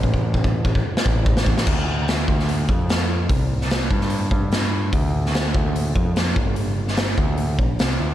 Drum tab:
CC |----------------|x---------------|----------------|----------------|
HH |----------------|----o---o---o---|o---o---o---o---|o---o---o---o---|
SD |---------o---o-o|----o--o----o---|---oo--o----o---|---oo-------o---|
BD |oo-oo-oo--o-o-o-|o-----o---o-----|o-----o---o-----|o-----o---o---o-|

CC |----------------|
HH |o---o---o---o---|
SD |---oo-------o---|
BD |------o---o-----|